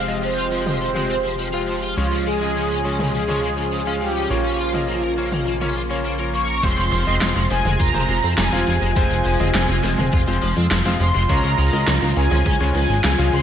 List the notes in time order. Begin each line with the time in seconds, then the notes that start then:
Already playing: F1 C3 F3 G#3 G4 F5
0.08 F3 G#3 C4 F4 D#5
0.23 F3 C5
0.37 F4
0.52 F3 G#3 C4 F4 C5
0.66 F3, mid tom
0.81 F3 C5
0.95 G#3 C4 F4 C5, mid tom
1.10 C4
1.25 F3
1.39 F3
1.54 G#3 C4 F4 F5
1.68 F3
1.83 F4
1.97 C#2 C#3 G#3 C#4 F4 C#5
2.12 F3
2.27 G#3 G#4
2.41 C#3 G#3 C#4 F4 D#5
2.56 C#3
2.70 C#4
2.85 C#3 G#3 C#4 F4 C#5
2.99 C#3, mid tom
3.14 C#3 G#4
3.28 F3 G#3 C#4 F4 C#5, mid tom
3.43 G#3
3.58 C#3
3.72 C#3
3.87 G#3 C#4 F4 F5
4.01 C#3 G4
4.16 C#4
4.30 A#1 A#3 C#4 F4 C#5
4.45 C#4
4.59 F4
4.74 A#3 C#4 F4 D#5, mid tom
4.89 A#3
5.03 A#4
5.18 A#3 C#4 F4 C#5
5.32 A#3, mid tom
5.47 A#3
5.61 A#3 C#4 F4 C#5, mid tom
5.76 F4
5.90 A#3 C#4 F4 C#5
6.05 A#3
6.20 A#3 C#4 F4 A#4 C#5
6.34 A#3 C#6
6.49 A#4
6.63 F1 C3 F3 G#3 C4 F4 C5 C6, kick, closed hi-hat, crash
6.78 F1 F3, closed hi-hat
6.92 F1 F3, closed hi-hat
7.07 F1 G#3 C4 F4 D#5, closed hi-hat
7.21 F1 F3, snare, closed hi-hat
7.36 F1 F3, closed hi-hat
7.50 F1 F3 G#3 C4 F4 C5 G#5, closed hi-hat
7.65 F1 G#3, closed hi-hat, mid tom
7.80 F1 F4 A#5, kick, closed hi-hat
7.94 F1 F3 G#3 C4 F4 C5, closed hi-hat, mid tom
8.09 F1 F3, closed hi-hat
8.23 F2 C4, closed hi-hat
8.38 F1 F3 G#5, snare, closed hi-hat
8.53 F1 F3 G#3 C4 F4 F5, closed hi-hat
8.67 F1 F3, closed hi-hat
8.82 F1 G#3
8.96 F1 F3 G#3 C4 F4 C5 G#5, kick, closed hi-hat
9.11 F1 F3, closed hi-hat
9.25 F1 F3, closed hi-hat
9.40 F1 G#3 C4 F4 D#5, closed hi-hat, mid tom
9.55 F1 F3, snare, closed hi-hat
9.69 F1 F3, closed hi-hat
9.84 F1 F3 G#3 C4 F4 C5, snare, closed hi-hat
9.98 F1 G#3, closed hi-hat, mid tom
10.13 F1 F4, kick, closed hi-hat
10.27 F1 F3 G#3 C4 F4 C5, closed hi-hat
10.42 F1 F3, closed hi-hat
10.57 F2 C4, closed hi-hat
10.71 F1 F3, snare, closed hi-hat
10.86 F1 F3 G#3 C4 F4 F5, closed hi-hat
11.00 F1 F3 C6, closed hi-hat
11.15 F1 G#3
11.29 C#2 C#3 G#3 C#4 F4 C#5 A#5, kick, closed hi-hat
11.44 C#2 C#3, closed hi-hat
11.58 C#2 C#3, closed hi-hat
11.73 C#2 G#3 C#4 F4 D#5, closed hi-hat
11.87 C#2 C#3, snare, closed hi-hat
12.02 C#2 C#3, closed hi-hat
12.17 C#2 C#3 G#3 C#4 F4 C#5 G#5, closed hi-hat
12.31 C#2 F3, closed hi-hat, mid tom
12.46 C#2 C#4, kick, closed hi-hat
12.60 C#2 C#3 G#3 C#4 F4 C#5, closed hi-hat, mid tom
12.75 C#2 C#3 G#5, closed hi-hat
12.89 G#1 G#3, closed hi-hat
13.04 C#2 C#3, snare, closed hi-hat
13.19 C#2 C#3 G#3 C#4 F4 F5, closed hi-hat
13.33 C#2 C#3 C6, closed hi-hat